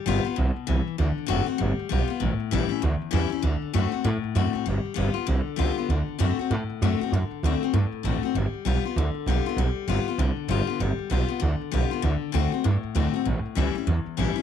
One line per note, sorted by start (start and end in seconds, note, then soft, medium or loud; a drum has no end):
0.06 0.20 G1 loud
0.06 0.24 G3 loud
0.06 0.25 B3 loud
0.06 0.23 F4 loud
0.25 0.38 B3 medium
0.25 0.37 F4 medium
0.25 muted upright bass stroke medium
0.36 0.51 C2 loud
0.36 0.66 B2 medium
0.56 muted upright bass stroke medium
0.67 0.82 C2 loud
0.67 0.97 E3 medium
0.87 muted upright bass stroke medium
0.98 1.12 D2 loud
0.98 1.25 D3 medium
1.18 muted upright bass stroke medium
1.26 1.43 F#1 loud
1.26 1.46 D3 medium
1.26 1.47 A3 medium
1.26 1.47 C4 loud
1.26 1.45 F#4 loud
1.46 1.60 C4 soft
1.46 1.59 F#4 medium
1.46 muted upright bass stroke medium
1.58 1.74 G1 loud
1.58 1.88 G3 medium
1.79 muted upright bass stroke medium
1.89 2.05 B1 medium
1.89 2.08 G3 loud
1.89 2.09 B3 medium
1.89 2.06 F4 medium
2.08 2.21 B3 medium
2.08 2.20 F4 medium
2.08 muted upright bass stroke medium
2.20 2.35 A1 medium
2.20 2.79 A2 medium
2.40 muted upright bass stroke medium
2.51 2.65 A1 loud
2.51 2.70 E3 loud
2.51 2.70 G3 loud
2.51 2.70 C#4 loud
2.51 2.68 E4 loud
2.69 2.82 C#4 medium
2.69 2.81 E4 medium
2.69 muted upright bass stroke medium
2.82 2.96 D2 loud
2.82 3.41 E2 medium
3.02 muted upright bass stroke medium
3.11 3.27 E2 loud
3.11 3.30 E3 medium
3.11 3.30 G3 loud
3.11 3.31 C#4 medium
3.11 3.28 E4 loud
3.30 3.43 C#4 medium
3.30 3.42 E4 medium
3.30 muted upright bass stroke medium
3.42 3.57 D2 medium
3.42 3.72 D3 medium
3.62 muted upright bass stroke medium
3.73 3.88 F#2 medium
3.73 3.92 D3 medium
3.73 3.92 A3 loud
3.73 3.92 C4 medium
3.73 3.91 F#4 medium
3.92 4.05 C4 soft
3.92 4.04 F#4 medium
3.92 muted upright bass stroke medium
4.04 4.64 A2 medium
4.04 4.18 A2 loud
4.24 muted upright bass stroke medium
4.35 4.49 F#2 loud
4.35 4.53 D3 medium
4.35 4.54 A3 medium
4.35 4.54 C4 medium
4.35 4.52 F#4 loud
4.53 4.66 C4 medium
4.53 4.65 F#4 medium
4.53 muted upright bass stroke medium
4.66 4.80 G1 medium
4.66 4.93 G3 medium
4.85 muted upright bass stroke medium
4.94 5.11 G1 loud
4.94 5.14 G3 medium
4.94 5.14 B3 loud
4.94 5.13 F4 loud
5.14 5.27 B3 soft
5.14 5.26 F4 medium
5.14 muted upright bass stroke medium
5.27 5.41 C2 loud
5.27 5.86 D3 medium
5.47 muted upright bass stroke medium
5.56 5.72 C#2 loud
5.56 5.75 G3 medium
5.56 5.76 B3 medium
5.56 5.76 F4 loud
5.77 5.89 B3 soft
5.77 5.89 F4 medium
5.77 muted upright bass stroke medium
5.89 6.02 D2 medium
5.89 6.17 D3 medium
6.08 muted upright bass stroke medium
6.19 6.33 F#2 medium
6.19 6.37 D3 medium
6.19 6.37 A3 medium
6.19 6.38 C4 loud
6.19 6.38 F#4 loud
6.39 6.51 C4 medium
6.39 6.50 F#4 medium
6.39 muted upright bass stroke medium
6.50 6.64 A2 loud
6.50 7.10 A2 medium
6.70 muted upright bass stroke medium
6.82 6.95 F#2 loud
6.82 7.00 D3 medium
6.82 7.00 A3 medium
6.82 7.00 C4 medium
6.82 7.00 F#4 medium
7.01 7.13 C4 medium
7.01 7.12 F#4 medium
7.01 muted upright bass stroke medium
7.12 7.25 F#2 medium
7.12 7.43 D3 medium
7.31 muted upright bass stroke medium
7.43 7.56 D2 medium
7.43 7.61 D3 medium
7.43 7.62 A3 medium
7.43 7.62 C4 loud
7.43 7.62 F#4 medium
7.62 7.74 C4 medium
7.62 7.73 F#4 medium
7.62 muted upright bass stroke medium
7.73 7.87 G2 medium
7.73 8.32 A2 medium
7.92 muted upright bass stroke medium
8.03 8.18 A1 medium
8.03 8.22 D3 medium
8.03 8.22 A3 medium
8.03 8.23 C4 medium
8.03 8.22 F#4 loud
8.23 8.35 C4 soft
8.23 8.34 F#4 medium
8.23 muted upright bass stroke medium
8.35 8.48 G1 medium
8.35 8.64 G3 medium
8.54 muted upright bass stroke medium
8.65 8.79 B1 medium
8.65 8.83 G3 loud
8.65 8.84 B3 loud
8.65 8.84 F4 loud
8.84 8.97 B3 soft
8.84 8.96 F4 medium
8.84 muted upright bass stroke medium
8.96 9.10 D2 loud
8.96 9.56 D3 medium
9.14 muted upright bass stroke medium
9.26 9.40 B1 loud
9.26 9.45 G3 medium
9.26 9.46 B3 medium
9.26 9.45 F4 medium
9.45 9.57 F4 medium
9.45 muted upright bass stroke medium
9.49 9.59 B3 medium
9.56 9.70 B1 loud
9.56 9.86 G3 medium
9.76 muted upright bass stroke medium
9.88 10.01 G1 medium
9.88 10.06 G3 medium
9.88 10.06 B3 medium
9.88 10.07 F4 loud
10.06 10.20 B3 medium
10.06 10.19 F4 medium
10.06 muted upright bass stroke medium
10.18 10.32 C2 loud
10.18 10.78 D3 medium
10.36 muted upright bass stroke medium
10.48 10.62 G1 medium
10.48 10.67 G3 medium
10.48 10.68 B3 medium
10.48 10.66 F4 loud
10.67 10.80 B3 medium
10.67 10.79 F4 medium
10.67 muted upright bass stroke medium
10.80 10.93 G1 medium
10.80 11.08 G3 medium
10.98 muted upright bass stroke medium
11.10 11.24 B1 loud
11.10 11.28 G3 medium
11.10 11.29 B3 medium
11.10 11.27 F4 medium
11.28 11.41 B3 soft
11.28 11.41 F4 medium
11.28 muted upright bass stroke medium
11.40 11.55 D2 loud
11.40 12.00 D3 medium
11.61 muted upright bass stroke medium
11.71 11.87 B1 medium
11.71 11.90 G3 medium
11.71 11.90 B3 medium
11.71 11.90 F4 loud
11.91 12.03 B3 medium
11.91 12.03 F4 medium
11.91 muted upright bass stroke medium
12.02 12.17 D2 loud
12.02 12.31 D3 medium
12.22 muted upright bass stroke medium
12.32 12.47 D2 medium
12.32 12.51 D3 medium
12.32 12.52 A3 medium
12.32 12.52 C4 loud
12.32 12.51 F#4 loud
12.52 12.65 C4 medium
12.52 12.64 F#4 medium
12.52 muted upright bass stroke medium
12.64 12.78 G2 medium
12.64 13.23 A2 medium
12.83 muted upright bass stroke medium
12.95 13.09 D2 loud
12.95 13.13 D3 medium
12.95 13.13 A3 medium
12.95 13.13 C4 loud
12.95 13.12 F#4 medium
13.14 13.26 C4 soft
13.14 13.25 F#4 medium
13.14 muted upright bass stroke medium
13.25 13.39 A1 medium
13.25 13.85 A2 medium
13.46 muted upright bass stroke medium
13.55 13.70 C#2 loud
13.55 13.74 E3 loud
13.55 13.75 G3 medium
13.55 13.75 C#4 medium
13.55 13.74 E4 loud
13.75 13.88 C#4 soft
13.75 13.87 E4 medium
13.75 muted upright bass stroke medium
13.87 14.01 E2 medium
13.87 14.42 E2 medium
14.06 muted upright bass stroke medium
14.17 14.32 A1 loud
14.17 14.35 E3 medium
14.17 14.36 G3 medium
14.17 14.36 C#4 medium
14.17 14.34 E4 medium
14.36 14.42 C#4 medium
14.36 14.42 E4 medium
14.36 muted upright bass stroke medium